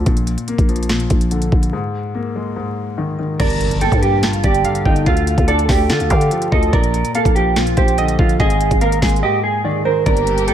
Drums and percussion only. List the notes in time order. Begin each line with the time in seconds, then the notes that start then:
0.06 kick, closed hi-hat
0.17 closed hi-hat
0.27 closed hi-hat
0.38 closed hi-hat
0.48 closed hi-hat
0.58 kick, closed hi-hat
0.69 closed hi-hat
0.76 closed hi-hat
0.83 closed hi-hat
0.89 snare, closed hi-hat
1.00 closed hi-hat
1.10 kick, closed hi-hat
1.21 closed hi-hat
1.31 closed hi-hat
1.42 closed hi-hat
1.52 kick
1.63 closed hi-hat
3.40 kick, closed hi-hat, crash
3.50 closed hi-hat
3.61 closed hi-hat
3.71 closed hi-hat
3.81 closed hi-hat
3.92 kick, closed hi-hat
4.03 closed hi-hat
4.23 snare, closed hi-hat
4.33 closed hi-hat
4.44 kick, closed hi-hat
4.54 closed hi-hat
4.65 closed hi-hat
4.75 closed hi-hat
4.86 kick
4.96 closed hi-hat
5.06 kick, closed hi-hat
5.17 closed hi-hat
5.27 closed hi-hat
5.38 kick, closed hi-hat
5.48 closed hi-hat
5.59 closed hi-hat
5.69 kick, snare, open hi-hat
5.90 snare, closed hi-hat
6.00 closed hi-hat
6.10 kick, closed hi-hat
6.21 closed hi-hat
6.31 closed hi-hat
6.42 closed hi-hat
6.52 kick
6.63 closed hi-hat
6.73 kick, closed hi-hat
6.84 closed hi-hat
6.94 closed hi-hat
7.05 closed hi-hat
7.15 closed hi-hat
7.25 kick, closed hi-hat
7.36 closed hi-hat
7.56 snare, closed hi-hat
7.67 closed hi-hat
7.77 kick, closed hi-hat
7.88 closed hi-hat
7.98 closed hi-hat
8.08 closed hi-hat
8.19 kick
8.29 closed hi-hat
8.40 kick, closed hi-hat
8.50 closed hi-hat
8.61 closed hi-hat
8.71 kick, closed hi-hat
8.81 closed hi-hat
8.92 closed hi-hat
9.02 kick, snare, closed hi-hat, open hi-hat
9.09 closed hi-hat
9.16 closed hi-hat
10.06 kick, closed hi-hat
10.17 closed hi-hat
10.27 closed hi-hat
10.38 closed hi-hat
10.48 closed hi-hat